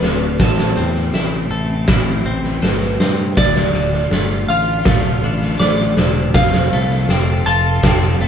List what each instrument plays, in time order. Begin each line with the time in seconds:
Already playing: clean electric guitar A2 A3 F4, string section D3 A3 F4, vibraphone C4, electric slide guitar B4
0.02 fingered electric bass D1, clean electric guitar D3, snare
0.39 fingered electric bass A1, clean electric guitar A2, string section C3 C4, electric slide guitar A4, vibraphone C5, kick, snare
0.58 snare
0.77 fingered electric bass E2, clean electric guitar C4, snare
0.95 snare
1.13 fingered electric bass A1, clean electric guitar E4, snare
1.50 fingered electric bass A1, clean electric guitar A4, vibraphone E5
1.88 fingered electric bass A1, clean electric guitar E4, kick, snare
2.25 fingered electric bass A1, clean electric guitar C4
2.44 snare
2.62 fingered electric bass G1, clean electric guitar A3, vibraphone B4, snare
2.81 snare
2.99 fingered electric bass G2, clean electric guitar C4, snare
3.37 fingered electric bass D1, clean electric guitar D2, string section D3 F4, vibraphone D5, electric slide guitar D5, kick, snare
3.56 snare
3.73 fingered electric bass D1, clean electric guitar D3, snare
3.93 snare
4.11 fingered electric bass G1, clean electric guitar A3, snare
4.48 fingered electric bass A1, clean electric guitar F4, electric slide guitar F5, vibraphone F5
4.85 fingered electric bass D1, clean electric guitar A3, kick, snare
5.22 fingered electric bass A1, clean electric guitar D3
5.41 snare
5.59 fingered electric bass A1, clean electric guitar A2, vibraphone C5, electric slide guitar D5, snare
5.79 snare
5.97 fingered electric bass E1, clean electric guitar D3, snare
6.34 fingered electric bass F1, clean electric guitar F2, string section F3 C4 A4, vibraphone C5, electric slide guitar F5, kick, snare
6.53 snare
6.72 fingered electric bass C2, clean electric guitar A3, snare
6.91 snare
7.08 fingered electric bass F1, clean electric guitar C4, snare
7.46 fingered electric bass F1, clean electric guitar F4, vibraphone F5, electric slide guitar A5
7.83 fingered electric bass F1, clean electric guitar C4, kick, snare
8.20 fingered electric bass F1, clean electric guitar A3